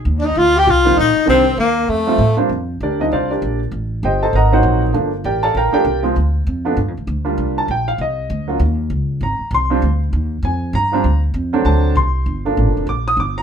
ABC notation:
X:1
M:4/4
L:1/16
Q:"Swing" 1/4=197
K:Bb
V:1 name="Alto saxophone"
z3/2 D/2 E2 F2 G2 F4 E4 | C4 B,4 A,6 z2 | z16 | z16 |
z16 | z16 | z16 | z16 |
z16 | z16 | z16 |]
V:2 name="Tenor saxophone"
z3/2 D/2 E2 F2 G2 F4 E4 | C4 B,4 A,6 z2 | z16 | z16 |
z16 | z16 | z16 | z16 |
z16 | z16 | z16 |]
V:3 name="Grand piano"
z16 | z16 | z4 [DGBd]2 [Ee]2 [Fcdf]2 [DGBd]4 z2 | z4 [Gceg]2 [Acea]2 [Be_gb]2 [_Gceg]4 z2 |
z4 [GBdg]2 [Adfa]2 [Bfgb]2 [GBdg]4 z2 | z16 | z2 a2 g2 f2 e8 | z8 b4 c'4- |
c'2 z6 _a4 b4- | b2 z6 a4 c'4- | c'2 z6 d'2 e'2 d'2 b2 |]
V:4 name="Grand piano"
z8 z2 [E,G,B,CF]2 z4 | [E,G,B,CD]2 z8 [F,G,A,CF]2 z2 [F,G,B,CD]2 | z6 [F,G,CD]6 z4 | z8 z2 [_G,B,CE]6 |
[F,A,B,D]2 z8 [F,A,B,D]2 z2 [F,_A,CF]2 | z6 [F,A,_CD]2 z6 [G,B,DF]2- | [G,B,DF]4 z8 z2 [_G,B,_DF]2 | z12 z2 [F,G,CD]2 |
z12 z2 [F,G,CD]2 | z6 [_G,A,CD]6 z4 | z2 [F,A,B,D]6 z8 |]
V:5 name="Upright bass" clef=bass
E,,4 D,,4 C,,4 B,,,2 z2 | C,,4 E,,4 F,,4 A,,4 | F,,4 D,,4 C,,4 B,,,4 | A,,,4 G,,,4 _A,,,4 B,,,4 |
G,,,4 A,,,4 B,,,2 z2 C,,4 | D,,4 F,,4 (3G,,2 F,,2 D,,2 D,,4 | C,,4 B,,,4 C,,4 D,,4 | E,,4 _D,,4 _A,,,2 z2 C,,4 |
D,,4 E,,4 F,,4 G,,4 | D,,4 F,,4 D,,4 C,,4 | G,,,4 (3A,,,2 G,,,2 F,,,2 B,,,4 G,,,4 |]